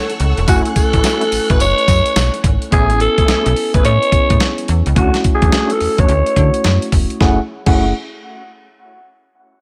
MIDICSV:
0, 0, Header, 1, 7, 480
1, 0, Start_track
1, 0, Key_signature, 3, "minor"
1, 0, Tempo, 560748
1, 409, Time_signature, 4, 2, 24, 8
1, 8227, End_track
2, 0, Start_track
2, 0, Title_t, "String section"
2, 0, Program_c, 0, 48
2, 0, Note_on_c, 0, 69, 88
2, 0, Note_on_c, 0, 78, 77
2, 0, Note_on_c, 0, 85, 76
2, 0, Note_on_c, 0, 88, 88
2, 390, Note_off_c, 0, 88, 0
2, 408, Note_on_c, 0, 90, 94
2, 2295, Note_off_c, 0, 69, 0
2, 2295, Note_off_c, 0, 78, 0
2, 2295, Note_off_c, 0, 85, 0
2, 2309, Note_off_c, 0, 90, 0
2, 8227, End_track
3, 0, Start_track
3, 0, Title_t, "Alto saxophone"
3, 0, Program_c, 1, 65
3, 0, Note_on_c, 1, 73, 118
3, 138, Note_off_c, 1, 73, 0
3, 417, Note_on_c, 1, 66, 90
3, 523, Note_off_c, 1, 66, 0
3, 655, Note_on_c, 1, 69, 100
3, 1291, Note_on_c, 1, 71, 88
3, 1304, Note_off_c, 1, 69, 0
3, 1374, Note_off_c, 1, 71, 0
3, 1379, Note_on_c, 1, 73, 120
3, 2060, Note_off_c, 1, 73, 0
3, 2335, Note_on_c, 1, 68, 92
3, 2555, Note_off_c, 1, 68, 0
3, 2576, Note_on_c, 1, 69, 107
3, 3170, Note_off_c, 1, 69, 0
3, 3208, Note_on_c, 1, 71, 88
3, 3287, Note_off_c, 1, 71, 0
3, 3298, Note_on_c, 1, 73, 120
3, 3979, Note_off_c, 1, 73, 0
3, 4255, Note_on_c, 1, 66, 86
3, 4475, Note_off_c, 1, 66, 0
3, 4575, Note_on_c, 1, 68, 98
3, 4894, Note_on_c, 1, 69, 98
3, 4906, Note_off_c, 1, 68, 0
3, 5131, Note_on_c, 1, 73, 108
3, 5144, Note_off_c, 1, 69, 0
3, 5934, Note_off_c, 1, 73, 0
3, 6176, Note_on_c, 1, 78, 88
3, 6330, Note_off_c, 1, 78, 0
3, 6566, Note_on_c, 1, 78, 84
3, 6787, Note_off_c, 1, 78, 0
3, 8227, End_track
4, 0, Start_track
4, 0, Title_t, "Tine electric piano"
4, 0, Program_c, 2, 4
4, 0, Control_c, 2, 64, 127
4, 0, Note_on_c, 2, 57, 69
4, 0, Note_on_c, 2, 61, 58
4, 0, Note_on_c, 2, 64, 56
4, 0, Note_on_c, 2, 80, 76
4, 371, Note_off_c, 2, 57, 0
4, 375, Note_off_c, 2, 61, 0
4, 378, Note_off_c, 2, 64, 0
4, 382, Note_off_c, 2, 80, 0
4, 401, Note_on_c, 2, 57, 67
4, 409, Note_on_c, 2, 61, 59
4, 416, Note_on_c, 2, 64, 60
4, 423, Note_on_c, 2, 80, 68
4, 2291, Note_off_c, 2, 57, 0
4, 2295, Note_off_c, 2, 61, 0
4, 2298, Note_off_c, 2, 64, 0
4, 2302, Note_off_c, 2, 80, 0
4, 2322, Note_on_c, 2, 59, 66
4, 2330, Note_on_c, 2, 61, 59
4, 2337, Note_on_c, 2, 64, 60
4, 2341, Control_c, 2, 64, 0
4, 2343, Note_on_c, 2, 80, 74
4, 2469, Control_c, 2, 64, 127
4, 3501, Note_off_c, 2, 59, 0
4, 3506, Note_off_c, 2, 61, 0
4, 3509, Note_off_c, 2, 64, 0
4, 3512, Note_off_c, 2, 80, 0
4, 3526, Note_on_c, 2, 59, 51
4, 3530, Note_on_c, 2, 61, 44
4, 3533, Note_on_c, 2, 64, 45
4, 3536, Note_on_c, 2, 68, 54
4, 4237, Note_off_c, 2, 61, 0
4, 4241, Note_on_c, 2, 57, 64
4, 4245, Note_off_c, 2, 64, 0
4, 4247, Note_on_c, 2, 61, 63
4, 4248, Note_off_c, 2, 59, 0
4, 4253, Note_off_c, 2, 68, 0
4, 4255, Note_on_c, 2, 64, 62
4, 4259, Control_c, 2, 64, 0
4, 4261, Note_on_c, 2, 66, 76
4, 4422, Control_c, 2, 64, 127
4, 5421, Note_off_c, 2, 57, 0
4, 5424, Note_off_c, 2, 61, 0
4, 5428, Note_off_c, 2, 64, 0
4, 5431, Note_off_c, 2, 66, 0
4, 5447, Note_on_c, 2, 57, 52
4, 5451, Note_on_c, 2, 61, 45
4, 5454, Note_on_c, 2, 64, 41
4, 5456, Note_on_c, 2, 66, 51
4, 6159, Note_off_c, 2, 61, 0
4, 6160, Note_off_c, 2, 57, 0
4, 6160, Note_off_c, 2, 64, 0
4, 6169, Note_on_c, 2, 61, 76
4, 6170, Note_on_c, 2, 57, 86
4, 6170, Note_on_c, 2, 64, 77
4, 6171, Note_on_c, 2, 68, 97
4, 6173, Note_off_c, 2, 66, 0
4, 6182, Control_c, 2, 64, 0
4, 6327, Note_off_c, 2, 61, 0
4, 6327, Note_off_c, 2, 64, 0
4, 6328, Note_off_c, 2, 57, 0
4, 6328, Note_off_c, 2, 68, 0
4, 6561, Note_on_c, 2, 57, 79
4, 6561, Note_on_c, 2, 68, 84
4, 6562, Note_on_c, 2, 61, 75
4, 6562, Note_on_c, 2, 64, 76
4, 6784, Note_off_c, 2, 57, 0
4, 6784, Note_off_c, 2, 64, 0
4, 6784, Note_off_c, 2, 68, 0
4, 6785, Note_off_c, 2, 61, 0
4, 8227, End_track
5, 0, Start_track
5, 0, Title_t, "Tonewheel organ"
5, 0, Program_c, 3, 16
5, 406, Note_on_c, 3, 57, 98
5, 408, Note_on_c, 3, 61, 95
5, 410, Note_on_c, 3, 64, 83
5, 411, Note_on_c, 3, 66, 111
5, 584, Note_off_c, 3, 57, 0
5, 585, Note_off_c, 3, 61, 0
5, 586, Note_off_c, 3, 64, 0
5, 586, Note_off_c, 3, 66, 0
5, 799, Note_on_c, 3, 57, 75
5, 800, Note_on_c, 3, 61, 73
5, 802, Note_on_c, 3, 64, 69
5, 803, Note_on_c, 3, 66, 83
5, 876, Note_off_c, 3, 57, 0
5, 878, Note_off_c, 3, 61, 0
5, 879, Note_off_c, 3, 64, 0
5, 882, Note_off_c, 3, 66, 0
5, 886, Note_on_c, 3, 57, 77
5, 889, Note_on_c, 3, 61, 69
5, 890, Note_on_c, 3, 64, 71
5, 892, Note_on_c, 3, 66, 83
5, 1064, Note_off_c, 3, 57, 0
5, 1065, Note_off_c, 3, 61, 0
5, 1065, Note_off_c, 3, 64, 0
5, 1067, Note_off_c, 3, 66, 0
5, 1279, Note_on_c, 3, 57, 74
5, 1281, Note_on_c, 3, 61, 72
5, 1283, Note_on_c, 3, 64, 65
5, 1285, Note_on_c, 3, 66, 82
5, 1410, Note_off_c, 3, 57, 0
5, 1411, Note_off_c, 3, 61, 0
5, 1411, Note_off_c, 3, 64, 0
5, 1412, Note_off_c, 3, 66, 0
5, 2326, Note_on_c, 3, 57, 97
5, 2328, Note_on_c, 3, 61, 85
5, 2330, Note_on_c, 3, 64, 86
5, 2332, Note_on_c, 3, 68, 113
5, 2504, Note_off_c, 3, 57, 0
5, 2505, Note_off_c, 3, 61, 0
5, 2506, Note_off_c, 3, 64, 0
5, 2507, Note_off_c, 3, 68, 0
5, 2719, Note_on_c, 3, 57, 80
5, 2720, Note_on_c, 3, 61, 70
5, 2722, Note_on_c, 3, 64, 68
5, 2724, Note_on_c, 3, 68, 78
5, 2797, Note_off_c, 3, 57, 0
5, 2798, Note_off_c, 3, 61, 0
5, 2800, Note_off_c, 3, 64, 0
5, 2802, Note_off_c, 3, 68, 0
5, 2807, Note_on_c, 3, 57, 75
5, 2809, Note_on_c, 3, 61, 73
5, 2810, Note_on_c, 3, 64, 70
5, 2813, Note_on_c, 3, 68, 90
5, 2984, Note_off_c, 3, 57, 0
5, 2985, Note_off_c, 3, 61, 0
5, 2986, Note_off_c, 3, 64, 0
5, 2987, Note_off_c, 3, 68, 0
5, 3198, Note_on_c, 3, 57, 72
5, 3200, Note_on_c, 3, 61, 66
5, 3202, Note_on_c, 3, 64, 72
5, 3204, Note_on_c, 3, 68, 80
5, 3329, Note_off_c, 3, 57, 0
5, 3330, Note_off_c, 3, 61, 0
5, 3331, Note_off_c, 3, 64, 0
5, 3332, Note_off_c, 3, 68, 0
5, 4245, Note_on_c, 3, 57, 93
5, 4248, Note_on_c, 3, 61, 86
5, 4249, Note_on_c, 3, 62, 91
5, 4250, Note_on_c, 3, 66, 97
5, 4423, Note_off_c, 3, 57, 0
5, 4424, Note_off_c, 3, 61, 0
5, 4425, Note_off_c, 3, 62, 0
5, 4426, Note_off_c, 3, 66, 0
5, 4638, Note_on_c, 3, 57, 75
5, 4639, Note_on_c, 3, 61, 66
5, 4641, Note_on_c, 3, 62, 69
5, 4642, Note_on_c, 3, 66, 81
5, 4716, Note_off_c, 3, 57, 0
5, 4717, Note_off_c, 3, 61, 0
5, 4719, Note_off_c, 3, 62, 0
5, 4721, Note_off_c, 3, 66, 0
5, 4726, Note_on_c, 3, 57, 77
5, 4728, Note_on_c, 3, 61, 76
5, 4729, Note_on_c, 3, 62, 72
5, 4731, Note_on_c, 3, 66, 80
5, 4904, Note_off_c, 3, 57, 0
5, 4904, Note_off_c, 3, 61, 0
5, 4905, Note_off_c, 3, 62, 0
5, 4906, Note_off_c, 3, 66, 0
5, 5118, Note_on_c, 3, 57, 71
5, 5120, Note_on_c, 3, 61, 68
5, 5122, Note_on_c, 3, 62, 70
5, 5123, Note_on_c, 3, 66, 81
5, 5249, Note_off_c, 3, 57, 0
5, 5250, Note_off_c, 3, 61, 0
5, 5251, Note_off_c, 3, 62, 0
5, 5252, Note_off_c, 3, 66, 0
5, 6165, Note_on_c, 3, 57, 86
5, 6167, Note_on_c, 3, 61, 83
5, 6170, Note_on_c, 3, 64, 74
5, 6173, Note_on_c, 3, 66, 90
5, 6325, Note_off_c, 3, 57, 0
5, 6326, Note_off_c, 3, 61, 0
5, 6327, Note_off_c, 3, 64, 0
5, 6329, Note_off_c, 3, 66, 0
5, 6557, Note_on_c, 3, 57, 87
5, 6560, Note_on_c, 3, 61, 79
5, 6563, Note_on_c, 3, 64, 76
5, 6566, Note_on_c, 3, 66, 94
5, 6725, Note_off_c, 3, 57, 0
5, 6727, Note_off_c, 3, 61, 0
5, 6728, Note_off_c, 3, 64, 0
5, 6730, Note_off_c, 3, 66, 0
5, 8227, End_track
6, 0, Start_track
6, 0, Title_t, "FM bass"
6, 0, Program_c, 4, 39
6, 172, Note_on_c, 4, 37, 101
6, 290, Note_off_c, 4, 37, 0
6, 323, Note_on_c, 4, 28, 102
6, 391, Note_off_c, 4, 28, 0
6, 410, Note_on_c, 4, 30, 100
6, 529, Note_off_c, 4, 30, 0
6, 803, Note_on_c, 4, 33, 90
6, 871, Note_off_c, 4, 33, 0
6, 1132, Note_on_c, 4, 33, 50
6, 1192, Note_off_c, 4, 33, 0
6, 1285, Note_on_c, 4, 33, 100
6, 1352, Note_off_c, 4, 33, 0
6, 1371, Note_on_c, 4, 30, 96
6, 1489, Note_off_c, 4, 30, 0
6, 1609, Note_on_c, 4, 42, 108
6, 1728, Note_off_c, 4, 42, 0
6, 1850, Note_on_c, 4, 35, 90
6, 1969, Note_off_c, 4, 35, 0
6, 2088, Note_on_c, 4, 32, 105
6, 2207, Note_off_c, 4, 32, 0
6, 2331, Note_on_c, 4, 33, 113
6, 2637, Note_off_c, 4, 33, 0
6, 2813, Note_on_c, 4, 35, 51
6, 2873, Note_off_c, 4, 35, 0
6, 2964, Note_on_c, 4, 35, 109
6, 3032, Note_off_c, 4, 35, 0
6, 3204, Note_on_c, 4, 33, 81
6, 3272, Note_off_c, 4, 33, 0
6, 3293, Note_on_c, 4, 45, 109
6, 3410, Note_off_c, 4, 45, 0
6, 3530, Note_on_c, 4, 45, 47
6, 3590, Note_off_c, 4, 45, 0
6, 3684, Note_on_c, 4, 45, 96
6, 3751, Note_off_c, 4, 45, 0
6, 4013, Note_on_c, 4, 40, 104
6, 4131, Note_off_c, 4, 40, 0
6, 4165, Note_on_c, 4, 37, 101
6, 4232, Note_off_c, 4, 37, 0
6, 4249, Note_on_c, 4, 38, 98
6, 4368, Note_off_c, 4, 38, 0
6, 4642, Note_on_c, 4, 40, 85
6, 4710, Note_off_c, 4, 40, 0
6, 4973, Note_on_c, 4, 40, 48
6, 5033, Note_off_c, 4, 40, 0
6, 5123, Note_on_c, 4, 40, 91
6, 5191, Note_off_c, 4, 40, 0
6, 5214, Note_on_c, 4, 38, 103
6, 5331, Note_off_c, 4, 38, 0
6, 5449, Note_on_c, 4, 50, 104
6, 5568, Note_off_c, 4, 50, 0
6, 5692, Note_on_c, 4, 42, 100
6, 5810, Note_off_c, 4, 42, 0
6, 5928, Note_on_c, 4, 28, 99
6, 6047, Note_off_c, 4, 28, 0
6, 6170, Note_on_c, 4, 30, 98
6, 6327, Note_off_c, 4, 30, 0
6, 6562, Note_on_c, 4, 30, 102
6, 6785, Note_off_c, 4, 30, 0
6, 8227, End_track
7, 0, Start_track
7, 0, Title_t, "Drums"
7, 82, Note_on_c, 9, 42, 51
7, 168, Note_off_c, 9, 42, 0
7, 169, Note_on_c, 9, 42, 86
7, 255, Note_off_c, 9, 42, 0
7, 320, Note_on_c, 9, 42, 47
7, 406, Note_off_c, 9, 42, 0
7, 408, Note_on_c, 9, 54, 80
7, 409, Note_on_c, 9, 36, 113
7, 409, Note_on_c, 9, 42, 75
7, 494, Note_off_c, 9, 36, 0
7, 494, Note_off_c, 9, 42, 0
7, 494, Note_off_c, 9, 54, 0
7, 560, Note_on_c, 9, 42, 54
7, 646, Note_off_c, 9, 42, 0
7, 649, Note_on_c, 9, 42, 70
7, 650, Note_on_c, 9, 36, 94
7, 650, Note_on_c, 9, 54, 63
7, 734, Note_off_c, 9, 42, 0
7, 735, Note_off_c, 9, 54, 0
7, 736, Note_off_c, 9, 36, 0
7, 798, Note_on_c, 9, 42, 56
7, 801, Note_on_c, 9, 36, 82
7, 884, Note_off_c, 9, 42, 0
7, 887, Note_off_c, 9, 36, 0
7, 887, Note_on_c, 9, 54, 93
7, 889, Note_on_c, 9, 38, 127
7, 890, Note_on_c, 9, 42, 80
7, 973, Note_off_c, 9, 54, 0
7, 975, Note_off_c, 9, 38, 0
7, 976, Note_off_c, 9, 42, 0
7, 1038, Note_on_c, 9, 42, 60
7, 1124, Note_off_c, 9, 42, 0
7, 1129, Note_on_c, 9, 54, 60
7, 1130, Note_on_c, 9, 46, 74
7, 1214, Note_off_c, 9, 54, 0
7, 1216, Note_off_c, 9, 46, 0
7, 1283, Note_on_c, 9, 36, 94
7, 1283, Note_on_c, 9, 42, 55
7, 1368, Note_off_c, 9, 42, 0
7, 1369, Note_off_c, 9, 36, 0
7, 1370, Note_on_c, 9, 54, 67
7, 1371, Note_on_c, 9, 42, 66
7, 1456, Note_off_c, 9, 42, 0
7, 1456, Note_off_c, 9, 54, 0
7, 1525, Note_on_c, 9, 42, 49
7, 1608, Note_on_c, 9, 36, 88
7, 1610, Note_off_c, 9, 42, 0
7, 1610, Note_on_c, 9, 42, 68
7, 1610, Note_on_c, 9, 54, 66
7, 1694, Note_off_c, 9, 36, 0
7, 1695, Note_off_c, 9, 54, 0
7, 1696, Note_off_c, 9, 42, 0
7, 1760, Note_on_c, 9, 42, 58
7, 1846, Note_off_c, 9, 42, 0
7, 1848, Note_on_c, 9, 42, 73
7, 1849, Note_on_c, 9, 54, 97
7, 1851, Note_on_c, 9, 38, 114
7, 1934, Note_off_c, 9, 42, 0
7, 1934, Note_off_c, 9, 54, 0
7, 1936, Note_off_c, 9, 38, 0
7, 2001, Note_on_c, 9, 42, 51
7, 2087, Note_off_c, 9, 42, 0
7, 2087, Note_on_c, 9, 36, 89
7, 2089, Note_on_c, 9, 42, 84
7, 2173, Note_off_c, 9, 36, 0
7, 2175, Note_off_c, 9, 42, 0
7, 2241, Note_on_c, 9, 42, 50
7, 2327, Note_off_c, 9, 42, 0
7, 2330, Note_on_c, 9, 36, 116
7, 2330, Note_on_c, 9, 42, 71
7, 2415, Note_off_c, 9, 36, 0
7, 2415, Note_off_c, 9, 42, 0
7, 2480, Note_on_c, 9, 42, 55
7, 2566, Note_off_c, 9, 42, 0
7, 2570, Note_on_c, 9, 42, 66
7, 2655, Note_off_c, 9, 42, 0
7, 2721, Note_on_c, 9, 42, 52
7, 2722, Note_on_c, 9, 36, 85
7, 2806, Note_off_c, 9, 42, 0
7, 2808, Note_off_c, 9, 36, 0
7, 2810, Note_on_c, 9, 38, 127
7, 2812, Note_on_c, 9, 42, 79
7, 2896, Note_off_c, 9, 38, 0
7, 2897, Note_off_c, 9, 42, 0
7, 2960, Note_on_c, 9, 42, 63
7, 3046, Note_off_c, 9, 42, 0
7, 3051, Note_on_c, 9, 46, 69
7, 3137, Note_off_c, 9, 46, 0
7, 3203, Note_on_c, 9, 42, 55
7, 3204, Note_on_c, 9, 36, 89
7, 3289, Note_off_c, 9, 36, 0
7, 3289, Note_off_c, 9, 42, 0
7, 3292, Note_on_c, 9, 42, 65
7, 3378, Note_off_c, 9, 42, 0
7, 3446, Note_on_c, 9, 42, 47
7, 3528, Note_on_c, 9, 36, 97
7, 3530, Note_off_c, 9, 42, 0
7, 3530, Note_on_c, 9, 42, 71
7, 3614, Note_off_c, 9, 36, 0
7, 3615, Note_off_c, 9, 42, 0
7, 3680, Note_on_c, 9, 42, 57
7, 3683, Note_on_c, 9, 36, 92
7, 3766, Note_off_c, 9, 42, 0
7, 3768, Note_off_c, 9, 36, 0
7, 3768, Note_on_c, 9, 42, 71
7, 3770, Note_on_c, 9, 38, 117
7, 3854, Note_off_c, 9, 42, 0
7, 3856, Note_off_c, 9, 38, 0
7, 3921, Note_on_c, 9, 42, 50
7, 4007, Note_off_c, 9, 42, 0
7, 4008, Note_on_c, 9, 42, 85
7, 4094, Note_off_c, 9, 42, 0
7, 4160, Note_on_c, 9, 42, 51
7, 4246, Note_off_c, 9, 42, 0
7, 4248, Note_on_c, 9, 36, 113
7, 4248, Note_on_c, 9, 42, 74
7, 4333, Note_off_c, 9, 42, 0
7, 4334, Note_off_c, 9, 36, 0
7, 4399, Note_on_c, 9, 42, 55
7, 4400, Note_on_c, 9, 38, 64
7, 4485, Note_off_c, 9, 38, 0
7, 4485, Note_off_c, 9, 42, 0
7, 4488, Note_on_c, 9, 42, 74
7, 4490, Note_on_c, 9, 36, 91
7, 4574, Note_off_c, 9, 42, 0
7, 4575, Note_off_c, 9, 36, 0
7, 4638, Note_on_c, 9, 42, 54
7, 4641, Note_on_c, 9, 36, 91
7, 4724, Note_off_c, 9, 42, 0
7, 4727, Note_off_c, 9, 36, 0
7, 4729, Note_on_c, 9, 38, 125
7, 4730, Note_on_c, 9, 42, 78
7, 4814, Note_off_c, 9, 38, 0
7, 4815, Note_off_c, 9, 42, 0
7, 4877, Note_on_c, 9, 42, 59
7, 4963, Note_off_c, 9, 42, 0
7, 4969, Note_on_c, 9, 46, 66
7, 5055, Note_off_c, 9, 46, 0
7, 5121, Note_on_c, 9, 42, 58
7, 5122, Note_on_c, 9, 36, 99
7, 5206, Note_off_c, 9, 42, 0
7, 5208, Note_off_c, 9, 36, 0
7, 5209, Note_on_c, 9, 42, 59
7, 5295, Note_off_c, 9, 42, 0
7, 5362, Note_on_c, 9, 42, 48
7, 5447, Note_off_c, 9, 42, 0
7, 5447, Note_on_c, 9, 36, 89
7, 5447, Note_on_c, 9, 42, 67
7, 5533, Note_off_c, 9, 36, 0
7, 5533, Note_off_c, 9, 42, 0
7, 5597, Note_on_c, 9, 42, 56
7, 5682, Note_off_c, 9, 42, 0
7, 5685, Note_on_c, 9, 42, 73
7, 5688, Note_on_c, 9, 38, 119
7, 5771, Note_off_c, 9, 42, 0
7, 5774, Note_off_c, 9, 38, 0
7, 5840, Note_on_c, 9, 42, 50
7, 5925, Note_off_c, 9, 42, 0
7, 5926, Note_on_c, 9, 36, 85
7, 5927, Note_on_c, 9, 46, 84
7, 6012, Note_off_c, 9, 36, 0
7, 6012, Note_off_c, 9, 46, 0
7, 6080, Note_on_c, 9, 42, 47
7, 6165, Note_off_c, 9, 42, 0
7, 6167, Note_on_c, 9, 38, 84
7, 6169, Note_on_c, 9, 36, 110
7, 6253, Note_off_c, 9, 38, 0
7, 6254, Note_off_c, 9, 36, 0
7, 6560, Note_on_c, 9, 49, 83
7, 6561, Note_on_c, 9, 36, 103
7, 6646, Note_off_c, 9, 36, 0
7, 6646, Note_off_c, 9, 49, 0
7, 8227, End_track
0, 0, End_of_file